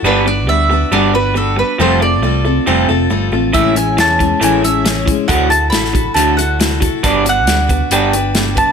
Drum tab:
HH |----------------|----------------|x-x-x-x-x-x-x-x-|x-x-x-x-x-x-x-x-|
SD |----------------|----------------|----o-------o---|----oo------o---|
BD |----------------|----------------|o-----o-------o-|o-----o-------o-|

HH |x-x-x-x-x-x-x-x-|
SD |----o-------o---|
BD |o-----o-------o-|